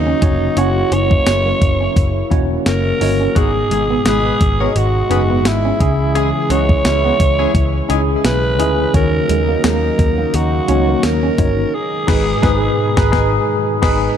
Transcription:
Already playing: D#2 C#3 F#3 A#3 C#4 D#4 F#4 C#5
0.07 C#4
0.22 F1 A#3 C#4 D#4 F#4 C#5, kick, closed hi-hat
0.56 F#1 A#3 C#4 E4 F#4 C#5, closed hi-hat
0.76 muted clean electric guitar stroke
0.92 F#1 C#4 C#5, closed hi-hat
1.11 kick
1.26 F#1, snare, closed hi-hat, tambourine
1.46 A#3
1.61 F#1, muted clean electric guitar stroke, kick, closed hi-hat
1.81 C#4
1.96 F#1, kick, closed hi-hat
2.31 E1 A#3 C#4 D#4 E4 F#4 C#5, kick, closed hi-hat
2.66 F#1 A#4, muted clean electric guitar stroke, snare, closed hi-hat, tambourine
3.00 G1 A#3 C#4 D#4 E4 F#4 C#5, open hi-hat
3.21 C#4
3.35 G#1 G#2 B2 F#3 G#3 B3 D#4 F#4 G#4 D#5, kick, closed hi-hat
3.55 muted clean electric guitar stroke
3.71 G#1 G#3 B3 D#4 G#4, closed hi-hat
3.90 B3
4.05 G#1 G#3 B3 D#4 G#4 B4, snare, closed hi-hat, tambourine
4.25 B3 D#4 G#4 B4, muted clean electric guitar stroke
4.41 G#1, kick, closed hi-hat
4.60 B3 C#4 F#4 A#4 C#5
4.70 G#4
4.76 G#1 F#4, muted clean electric guitar stroke, closed hi-hat
5.10 F#1 B3 C#4 D#4 G#4 B4, closed hi-hat
5.30 B3
5.45 G#1 E4, muted clean electric guitar stroke, snare, closed hi-hat, tambourine
5.65 C#4
5.80 C#2 C#3 E3 C#4 D#4 E4 G#4, kick, closed hi-hat
6.15 G#3 C#4 E4 G#4, closed hi-hat
6.34 muted clean electric guitar stroke
6.50 C#2 F#3 B3 C#4 D#4 F#4 C#5, closed hi-hat
6.69 kick
6.85 C#2 E3 G#3 C#4 E4, snare, closed hi-hat, tambourine
7.04 F#3 B3 D#4 F#4
7.20 C#2, muted clean electric guitar stroke, kick, closed hi-hat
7.39 G#3 C#4 E4 G#4
7.55 C#2, kick, closed hi-hat
7.89 C#2 G#3 C#4 D#4 E4 G#4, closed hi-hat
8.24 B1 B4, muted clean electric guitar stroke, snare, closed hi-hat, tambourine
8.59 D2 C#4 D#4 E4 G#4, closed hi-hat
8.79 C#4
8.94 D#2 D#3 F#3 A#3 C#4 D#4 F#4 A#4 C#5, kick, closed hi-hat
9.13 muted clean electric guitar stroke
9.29 D#2 G#3, closed hi-hat
9.48 A#3
9.64 D#2 G#3 A#4, snare, closed hi-hat, tambourine
9.83 muted clean electric guitar stroke
9.99 D#2, kick, closed hi-hat
10.18 A#3
10.34 D#2 F#4, muted clean electric guitar stroke, closed hi-hat
10.68 C#2 A#3 C#4 D#4 F#4 C#5, closed hi-hat
10.88 A#3
11.03 D#2 A#4, muted clean electric guitar stroke, snare, closed hi-hat, tambourine
11.23 C#4
11.38 G1 A#3 C#4 D#4 F#4 C#5, kick, closed hi-hat
11.74 B2 D#3 G#3 D#4 G#4
12.07 G#1 G#2 B3 D#4 G#4 B4, kick, snare, crash
12.42 G#1 G#2 B3 D#4 G#4 B4, kick, snare
12.96 G#1 B3 D#4 G#4 B4, kick, snare
13.11 G#1 B3 D#4 G#4 B4, kick, snare
13.81 G#1 B3 D#4 G#4 B4, kick, snare, crash

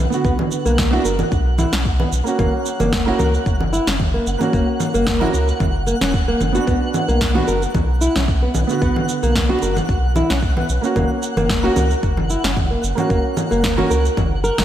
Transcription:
Already playing: F#5
0.10 D3 B3, shaker
0.14 F#4
0.25 B1 B3, kick, shaker
0.39 low conga
0.51 shaker
0.66 B1 A#3, shaker
0.78 kick, snare, low conga, shaker
0.91 B3 D4 E4 F#4
1.05 F#1 A#4, shaker
1.19 low conga, shaker
1.32 B1, kick, shaker
1.58 E4, low conga, shaker
1.73 B1 C#4, snare, shaker
1.85 kick, shaker
2.00 B3, low conga
2.12 B1, shaker
2.24 A#3 C#4, shaker
2.28 F#4
2.39 F#1 A#3, kick, low conga, shaker
2.66 shaker
2.80 F#1 A#3, low conga, shaker
2.93 kick, snare
3.06 A#3 C#4 E4 F#4
3.19 C#2 A#4, low conga, shaker
3.34 shaker
3.46 F#1, kick, shaker
3.61 low conga
3.73 E4, shaker
3.87 F#1 C#4, snare, shaker
4.00 kick, low conga, shaker
4.14 A#3
4.26 F#1, shaker
4.39 A#3 C#4 F#4, low conga, shaker
4.53 F#1 A#3, kick, shaker
4.80 low conga, shaker
4.94 F#1 A#3, shaker
5.07 kick, snare, shaker
5.20 A#3 C#4 E4 F#4, low conga
5.34 C#2 A#4, shaker
5.48 shaker
5.60 F#1, kick, low conga, shaker
5.87 A#3, shaker
6.01 E1 C#4, snare, low conga, shaker
6.14 kick, shaker
6.28 A#3
6.40 F#1, low conga, shaker
6.53 B3 D4 F#4, shaker
6.57 F#4
6.67 B1 B3, kick, shaker
6.94 low conga, shaker
7.08 B1 A#3, shaker
7.21 kick, snare, shaker
7.34 B3 D4 F#4, low conga
7.48 F#1 A#4, shaker
7.62 shaker
7.75 B1, kick, low conga, shaker
8.01 E4, shaker
8.16 B1 C#4, snare, low conga, shaker
8.28 kick, shaker
8.43 B3
8.55 B1, low conga, shaker
8.67 D3 B3 F#4, shaker
8.82 B1 B3, kick, shaker
8.96 low conga
9.09 shaker
9.23 B1 A#3, shaker
9.35 kick, snare, low conga, shaker
9.49 B3 D4 F#4
9.62 F#1 A#4, shaker
9.77 low conga, shaker
9.89 B1, kick, shaker
10.16 E4, low conga, shaker
10.30 B1 C#4, snare, shaker
10.42 kick, shaker
10.57 B3, low conga
10.69 B1, shaker
10.81 A#3 C#4 F#4, shaker
10.96 F#1 A#3, kick, low conga, shaker
11.23 shaker
11.37 F#1 A#3, low conga, shaker
11.49 kick, snare, shaker
11.63 A#3 C#4 F#4
11.76 C#2 A#4, low conga, shaker
11.91 shaker
12.03 F#1, kick, shaker
12.17 low conga
12.30 E4, shaker
12.44 F#1 C#4, snare, shaker
12.57 kick, low conga, shaker
12.71 A#3
12.83 F#1, shaker
12.95 A#3 C#4 F#4, low conga, shaker
13.10 F#1 A#3, kick, shaker
13.37 low conga, shaker
13.51 F#1 A#3, shaker
13.64 kick, snare, shaker
13.77 A#3 C#4 F#4, low conga
13.90 C#2 A#4, shaker
14.05 shaker
14.17 F#1, kick, low conga, shaker
14.44 A#4, shaker
14.58 F#1 A#3, snare, low conga, shaker

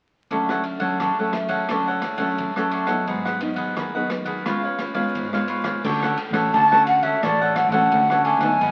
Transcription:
0.30 D3 F#3 A3 C#4 D4 A4 C#5 F#5, kick, ride
0.49 A4 C#5 F#5, cross-stick
0.64 muted cavaquinho stroke, ride
0.80 F#3 A3 C#4 A4 C#5 F#5, kick, ride
1.00 A2 D4 A4 C#5 F#5, kick, cross-stick, ride
1.19 F#3 A3 C#4 A4 C#5 F#5
1.33 muted cavaquinho stroke, cross-stick, ride
1.49 A4 C#5 F#5, kick, ride
1.69 D3 F#3 A3 C#4 D4 A4 C#5 F#5, kick, cross-stick, ride
1.87 A4 C#5 F#5
2.02 cross-stick, ride
2.18 F#3 A3 C#4 A4 C#5 F#5, kick, ride
2.38 A2, kick, ride
2.56 F#3 A3 C#4 A4 C#5 F#5, cross-stick
2.71 D4 A4 C#5 F#5, ride
2.87 F#3 B3 D#4 A4 C#5 F#5, kick, cross-stick, ride
3.07 G#2 D#4 G#4 B4 F#5, kick, ride
3.25 G#4 B4 F#5, cross-stick
3.40 F#3 B3 D#4, muted cavaquinho stroke, ride
3.56 G#4 B4 F#5, kick, ride
3.76 D#3 D#4 G#4 B4 F#5, kick, cross-stick, ride
3.95 F#3 B3 D#4 G#4 B4 F#5
4.10 muted cavaquinho stroke, cross-stick, ride
4.25 G#4 B4 F#5, kick, ride
4.45 C#3 G#3 B3 F4 B4 C#5 F5, kick, cross-stick, ride
4.64 B4 C#5 F5
4.79 cross-stick, ride
4.94 G#3 B3 F4 B4 C#5 F5, kick, ride
5.15 G#2, kick, ride
5.33 G#3 B3 F4 B4 C#5 F5, cross-stick
5.48 F4 B4 C#5 F5, ride
5.64 B4 C#5 F5, kick, cross-stick, ride
5.84 D2 D3 A3 C#4 D4 F#4 A4 C#5 F#5, kick, crash
6.03 A4 C#5 F#5, cross-stick
6.17 muted cavaquinho stroke, ride
6.30 A1 A3 C#4 F#4 C#5 F#5, kick, cross-stick, ride
6.34 A4
6.53 D2 A2 D4 A4 C#5 F#5 A5, kick, ride
6.71 A3 C#4 F#4 A4 C#5 F#5, cross-stick
6.87 F#5, muted cavaquinho stroke, ride
7.03 A4 C#5 E5 F#5, kick, ride
7.23 A1 D3 A3 D4 F#4 A4 C#5 D5 F#5, kick, cross-stick, ride
7.41 A4 C#5 F#5
7.56 F#5, cross-stick, ride
7.69 A1 A3 F#5, kick, ride
7.73 C#4 F#4 A4 C#5
7.92 D2 A2, kick, ride
8.10 A3 C#4 F#4 A4 C#5 F#5, cross-stick
8.25 D4 A4 C#5 F#5 G#5, ride
8.38 D2 F#3 F#5, kick, cross-stick, ride
8.42 B3 D#4 A4 C#5
8.61 G#1 G#2 D#4 G#4 B4 F#5, kick, ride

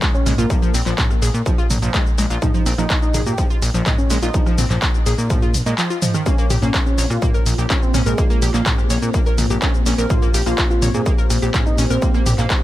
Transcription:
0.02 G#3, kick, clap, shaker
0.14 C#4, shaker
0.26 A#1 G#3, cross-stick, mid tom, open hi-hat, shaker
0.38 A#1 A#3 F4, shaker
0.50 F3, kick, shaker
0.62 F3, shaker
0.74 A#1 C4, open hi-hat, shaker
0.86 A#1 F3, clap, shaker
0.98 kick, clap, mid tom, shaker
1.11 cross-stick, shaker
1.22 A#1 G#4, open hi-hat, shaker
1.34 A#2, shaker
1.46 F3, kick, shaker
1.58 F4, shaker
1.70 A#1, mid tom, open hi-hat, shaker
1.82 A#1 F3, shaker
1.94 G#3, kick, cross-stick, clap, shaker
2.06 shaker
2.18 A#1 G#3, open hi-hat, shaker
2.30 A#1 F4, shaker
2.42 F3 D#4, kick, mid tom, shaker
2.54 F3, shaker
2.66 A#1 C4, open hi-hat, shaker
2.78 A#1 F3 D#4, cross-stick, shaker
2.90 kick, clap, shaker
3.02 D#4, shaker
3.14 A#1 G#4, mid tom, open hi-hat, shaker
3.26 A#2 G4, shaker
3.38 F3, kick, shaker
3.50 F4, shaker
3.62 A#1, cross-stick, open hi-hat, shaker
3.74 A#1 F3, shaker
3.86 G#3, kick, clap, mid tom, shaker
3.98 C#4, shaker
4.10 A#1 G#3, open hi-hat, shaker
4.22 A#1 D#4 F4, shaker
4.34 F3, kick, shaker
4.46 F3, cross-stick, shaker
4.58 A#1 C4, mid tom, open hi-hat, shaker
4.70 A#1 F3, clap, shaker
4.82 kick, clap, shaker
4.94 shaker
5.06 A#1 G#4, open hi-hat, shaker
5.18 A#2, shaker
5.30 F3, kick, cross-stick, mid tom, shaker
5.42 F4, shaker
5.54 A#1, open hi-hat, shaker
5.66 A#2 G#3, shaker
5.78 F3, clap, shaker
5.90 F4, shaker
6.02 F3, mid tom, open hi-hat, shaker
6.14 D#3, cross-stick, shaker
6.26 A#3 C4 C#4 F4 C5, kick, cross-stick, shaker
6.38 A#3, shaker
6.50 A#1 G4, mid tom, open hi-hat, shaker
6.62 A#1 A#3 C#4, shaker
6.74 kick, clap, shaker
6.86 C#4, shaker
6.98 A#1 C#5, open hi-hat, shaker
7.10 A#2 F4, cross-stick, shaker
7.22 A#3, kick, mid tom, shaker
7.34 A#4, shaker
7.46 A#1, open hi-hat, shaker
7.58 A#1 G4, shaker
7.70 C#4, kick, clap, shaker
7.82 C4, shaker
7.94 A#1 C#4, cross-stick, mid tom, open hi-hat, shaker
8.06 A#1 G#3 A#4, shaker
8.18 A#3, kick, shaker
8.30 A#3, shaker
8.42 A#1 G4, open hi-hat, shaker
8.54 A#1 A#3, clap, shaker
8.66 kick, clap, mid tom, shaker
8.78 cross-stick, shaker
8.90 A#1 C#5, open hi-hat, shaker
9.02 A#2, shaker
9.14 A#3, kick, shaker
9.26 A#4, shaker
9.38 A#1, mid tom, open hi-hat, shaker
9.50 A#1 G4, shaker
9.62 C#4, kick, cross-stick, clap, shaker
9.74 shaker
9.86 A#1 C#4, open hi-hat, shaker
9.98 A#1 A#4, shaker
10.10 A#3 F4 G4, kick, mid tom, shaker
10.22 A#3, shaker
10.34 A#1 G4, open hi-hat, shaker
10.46 A#1 A#3 F4, cross-stick, shaker
10.58 kick, clap, shaker
10.70 F4, shaker
10.82 A#1 C#5, mid tom, open hi-hat, shaker
10.94 A#2 G#4, shaker
11.06 A#3, kick, shaker
11.18 A#4, shaker
11.30 A#1, cross-stick, open hi-hat, shaker
11.42 A#1 G4, shaker
11.54 C#4, kick, clap, mid tom, shaker
11.66 D#4, shaker
11.78 A#1 C#4, open hi-hat, shaker
11.90 A#1 C4 A#4, shaker
12.02 A#3, kick, shaker
12.14 A#3, cross-stick, shaker
12.26 A#1 G4, mid tom, open hi-hat, shaker
12.38 A#1 A#3, clap, shaker
12.50 kick, clap, shaker

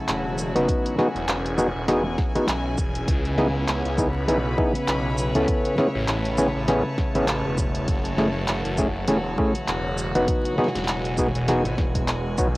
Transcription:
Already playing: C#3 F#3 A3 C#4 E4 F#4 C#5 A5
0.08 E1, clap, closed hi-hat
0.38 shaker
0.55 F#1 B3 D#4 F#4 B4, closed hi-hat
0.68 E3, kick, closed hi-hat
0.86 closed hi-hat
0.98 B3 D#4 F#4 G#4 G#5, snare
1.15 E1, closed hi-hat
1.28 E1, clap, closed hi-hat
1.46 closed hi-hat
1.58 B3 D#4 F#4 G#4, shaker
1.75 E1
1.88 E1 B3 D#4 F#4 G#4, snare, closed hi-hat
2.18 kick, snare
2.35 B3 D#4 F#4 G#4, closed hi-hat
2.48 B1, clap, closed hi-hat
2.78 E1, kick, shaker
2.95 closed hi-hat
3.08 C#2 C#3 B3 B4, kick, closed hi-hat
3.25 closed hi-hat
3.38 B3 D#4 E4 G#4, snare
3.42 C#5
3.68 C#2, clap, closed hi-hat
3.85 C#2, closed hi-hat
3.98 B3 D#4 E4 G#4, kick, shaker
4.12 B5
4.28 B1 B3 D#4 E4 G#4, closed hi-hat
4.58 B3 D#4 E4 G#4, kick
4.75 closed hi-hat
4.88 B1, clap, closed hi-hat
5.18 shaker
5.35 C#2 B3 C#4 E4 A4, closed hi-hat
5.48 A3, kick, closed hi-hat
5.65 closed hi-hat
5.78 B3 C#4 E4 G#4, snare
5.95 A1
6.06 A1 A5, clap, closed hi-hat
6.25 closed hi-hat
6.38 B3 C#4 E4 G#4, shaker
6.55 A1
6.68 B3 C#4 E4 G#4, snare, closed hi-hat
6.98 kick, snare
7.15 A1 B3 C#4 E4 G#4, closed hi-hat
7.28 clap, closed hi-hat
7.45 E1
7.58 kick, shaker
7.75 closed hi-hat
7.88 F#1 E3 F#3 F#4, kick, closed hi-hat
8.05 closed hi-hat
8.18 A3 C#4 E4 G#4, snare
8.48 F#1, clap, closed hi-hat
8.65 F#1, closed hi-hat
8.78 A3 C#4 E4 G#4, kick, shaker
9.07 E1 A3 C#4 E4 G#4, closed hi-hat
9.38 A3 C#4 E4 G#4, kick
9.55 closed hi-hat
9.68 E1, clap, closed hi-hat
9.98 shaker
10.15 F#1 B3 D#4 F#4 B4, closed hi-hat
10.28 B2 G#3, kick, closed hi-hat
10.43 G#5, closed hi-hat
10.58 B3 D#4 F#4 G#4, snare
10.64 snare
10.68 snare
10.75 E1, snare, closed hi-hat
10.78 snare
10.84 E1, snare
10.88 clap, closed hi-hat
11.05 closed hi-hat
11.18 B3 D#4 F#4 G#4, kick, shaker
11.35 E1, closed hi-hat
11.48 B3 D#4 F#4 G#4, snare, closed hi-hat
11.65 G#1, closed hi-hat
11.78 E1, kick, snare
11.95 kick, closed hi-hat
12.08 clap, closed hi-hat
12.38 B1 B3 D#4 F#4 C#5, kick, shaker

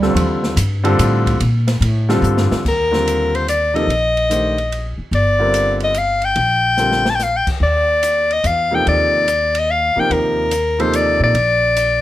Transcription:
Already playing: D2 G3
0.02 D3 G3 C4 F4 A4, snare
0.14 D#2, ride
0.43 snare
0.56 G2, hi-hat pedal, ride
0.84 D3 G3 C4 F4 A4, ride
0.99 A2, hi-hat pedal, ride
1.26 kick, ride
1.40 A#2, ride
1.68 snare, ride
1.81 A2, ride
2.09 D3 G3 C4 F4 A4, snare
2.22 G2, hi-hat pedal
2.37 snare
2.51 muted upright bass stroke, snare
2.65 D#2 A#4, kick, crash
2.91 D3 G3 C4 F4 A#4, snare
3.07 hi-hat pedal, ride
3.35 C5, ride
3.48 D5, hi-hat pedal, ride
3.74 C3 F3 A#3 D#4 A4 D#5, ride
3.87 A#1, ride
4.17 ride
4.30 D#3 A3 D4 G4 C5, hi-hat pedal, ride
4.58 ride
4.72 ride
4.98 muted upright bass stroke
5.11 G1 D5, ride
5.39 D3 G3 C4 F4 A#4
5.54 hi-hat pedal, ride
5.80 D#5, ride
5.94 F5, hi-hat pedal, ride
6.22 G5, ride
6.36 A#1, ride
6.77 D3 G3 C4 F4 A#4, snare, hi-hat pedal
6.92 snare
7.05 snare
7.10 A5
7.15 G5, snare, hi-hat pedal
7.23 F5
7.37 G5
7.47 muted upright bass stroke, kick, crash
7.60 D#2 D5
8.03 hi-hat pedal, ride
8.30 D#5, ride
8.44 E2 F5, hi-hat pedal, ride
8.71 C3 F3 A#3 D#4 A4
8.75 G5
8.87 D#2 D5, ride
9.28 hi-hat pedal, ride
9.55 D#5, ride
9.71 F5
9.96 C3 F3 A#3 D#4 A#4 G5, muted upright bass stroke
10.10 D#2 A#4, ride
10.51 hi-hat pedal, ride
10.79 C3 F3 A#3 D#4 A4 C5, ride
10.93 D5, hi-hat pedal, ride
11.20 A#2 D5
11.34 A#1, ride
11.76 hi-hat pedal, ride

